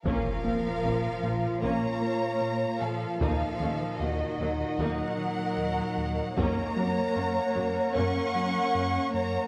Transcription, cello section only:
\new Staff \with { instrumentName = "Cello section" } { \clef bass \time 4/4 \key bes \minor \tempo 4 = 76 f2 bes4. f8 | f4 ees4 ges2 | bes2 des'4. bes8 | }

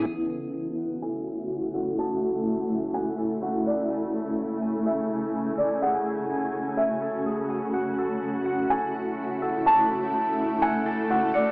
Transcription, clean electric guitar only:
\new Staff \with { instrumentName = "Clean electric guitar" } { \time 4/4 \key fis \minor \tempo 4 = 125 fis''8 a'4 fis''8 a'4. a'8 | fis'2 fis''8 a'8 fis'8 fis''8 | gis''8 a'4 gis''8 a'4. a'8 | gis'2 gis''8 a'8 gis'8 gis''8 |
fis''8 a'4 fis''8 a'4. a'8 | fis'2 fis''8 a'8 fis'8 fis''8 | }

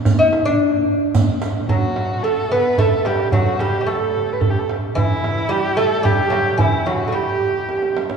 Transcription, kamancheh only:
\new Staff \with { instrumentName = "Kamancheh" } { \time 3/4 \tempo 4 = 110 r2. | fis'4 a'8 b'8 a'8 g'8 | fis'8 g'8 \tuplet 3/2 { a'4~ a'16 b'16 a'16 g'16 a'16 r8. } | e'4 g'8 a'8 g'4 |
e'8 fis'8 g'4. r8 | }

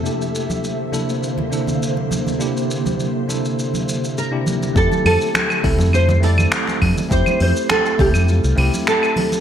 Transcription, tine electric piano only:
\new Staff \with { instrumentName = "Tine electric piano" } { \time 4/4 \key f \major \tempo 4 = 102 <c bes d' e' g'>4. <c bes d' e' a'>4 <c bes d' e' a'>4. | <c bes d' e' g'>4. <c bes d' e' a'>4 r8. <c bes d' e' g'>8. | <a c' e' g'>4. <a c' e' a'>4 <a c' e' a'>4. | <a c' e' g'>4. <a c' e' a'>4 <a c' e' g'>4. | }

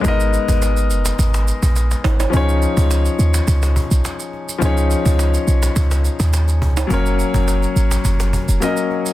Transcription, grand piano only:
\new Staff \with { instrumentName = "Grand piano" } { \time 4/4 \key cis \mixolydian \tempo 4 = 105 <gis b dis' ais' dis''>1 | <eis cis' dis' gis' cis''>1 | <eis cis' dis' gis' cis''>1 | <fis ais cis' ais' cis''>2. <fis ais cis' ais' dis''>4 | }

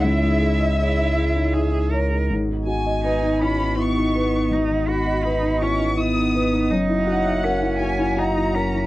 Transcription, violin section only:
\new Staff \with { instrumentName = "Violin section" } { \time 3/4 \key gis \minor \tempo 4 = 81 e''2~ e''8 r8 | r8 gis''4 b''8 cis'''4 | r8 b''4 cis'''8 dis'''4 | r8 fis''4 gis''8 ais''4 | }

